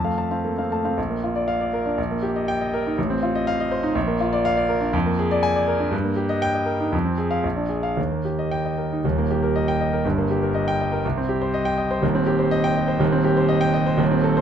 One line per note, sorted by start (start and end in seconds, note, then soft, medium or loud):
0.00 0.94 F2 medium
0.00 0.12 A5 medium
0.04 0.26 A3 soft
0.04 0.26 F5 soft
0.18 0.39 A5 medium
0.31 0.53 C4 soft
0.31 0.52 F5 medium
0.45 0.58 A#3 soft
0.45 0.66 A4 soft
0.58 0.79 C4 soft
0.58 0.79 F5 soft
0.72 0.93 A3 soft
0.72 0.93 A5 medium
0.85 0.98 C4 soft
0.85 0.97 F5 soft
0.97 1.95 A#1 medium
1.10 1.31 A#3 medium
1.24 1.44 F4 medium
1.36 1.56 D5 medium
1.48 1.68 F5 medium
1.61 1.81 D5 medium
1.73 1.93 A#4 medium
1.86 1.98 D4 medium
1.98 2.94 A#1 medium
2.11 2.31 A#3 medium
2.23 2.43 G4 medium
2.36 2.55 D#5 medium
2.48 2.68 G5 medium
2.61 2.80 D#5 medium
2.74 2.93 A#4 medium
2.87 2.98 D#4 medium
2.98 3.93 A1 medium
3.10 3.29 C4 medium
3.23 3.42 F4 medium
3.35 3.54 D#5 medium
3.47 3.66 F5 medium
3.60 3.79 D#5 medium
3.72 3.91 C5 medium
3.83 3.95 D#4 medium
3.95 4.91 A#1 medium
4.07 4.27 A#3 medium
4.20 4.40 F4 medium
4.33 4.52 D5 medium
4.45 4.65 F5 medium
4.57 4.77 D5 medium
4.69 4.89 A#4 medium
4.81 4.93 D4 medium
4.93 5.89 F2 medium
5.06 5.26 A#3 medium
5.19 5.38 G#4 medium
5.31 5.51 D5 medium
5.43 5.63 G#5 medium
5.56 5.75 D5 medium
5.68 5.87 A#4 medium
5.80 5.92 D4 medium
5.91 6.89 G2 medium
6.04 6.25 A#3 medium
6.16 6.37 G4 medium
6.29 6.50 D#5 medium
6.42 6.62 G5 medium
6.54 6.75 D#5 medium
6.66 6.87 A#4 medium
6.80 6.92 D#4 medium
6.92 7.42 F2 medium
7.05 7.26 C4 medium
7.18 7.39 G#4 medium
7.31 7.44 F5 medium
7.43 7.95 A#1 medium
7.57 7.78 D4 soft
7.69 7.91 G#4 soft
7.83 7.97 F5 medium
7.97 9.00 D#2 medium
8.11 8.33 A#3 soft
8.25 8.46 G4 soft
8.39 8.60 D#5 medium
8.51 8.73 G5 medium
8.65 8.86 D#5 soft
8.78 8.99 A#4 soft
8.93 9.05 D#4 soft
9.04 10.01 D#1 medium
9.04 10.02 D#2 medium
9.18 9.38 A#3 medium
9.31 9.50 G4 medium
9.43 9.62 A#4 medium
9.56 9.75 D#5 medium
9.68 9.87 G5 medium
9.81 10.00 D#5 medium
9.93 10.05 A#4 medium
10.05 11.01 G1 medium
10.05 11.02 G2 medium
10.18 10.37 A#3 medium
10.31 10.50 G4 medium
10.43 10.62 A#4 medium
10.55 10.74 D#5 medium
10.68 10.87 G5 medium
10.80 11.00 D#5 medium
10.92 11.04 A#4 medium
11.05 12.00 C2 medium
11.17 11.37 C4 medium
11.29 11.49 G4 medium
11.41 11.61 C5 medium
11.54 11.73 D#5 medium
11.65 11.85 G5 medium
11.78 11.98 D#5 medium
11.91 12.03 C5 medium
12.02 12.97 D#1 medium
12.02 12.99 D#2 medium
12.15 12.35 C4 medium
12.26 12.47 G4 medium
12.39 12.59 C5 medium
12.51 12.71 D#5 medium
12.64 12.84 G5 medium
12.76 12.96 D#5 medium
12.88 13.01 C5 medium
12.99 13.95 D#1 medium
12.99 13.97 D#2 medium
13.12 13.33 C4 medium
13.24 13.45 G4 medium
13.37 13.58 C5 medium
13.49 13.70 D#5 medium
13.61 13.82 G5 medium
13.74 13.95 D#5 medium
13.86 14.00 C5 medium
13.97 14.41 D#1 medium
13.97 14.41 D#2 medium
14.11 14.32 C4 medium
14.24 14.41 A4 medium
14.37 14.41 C5 medium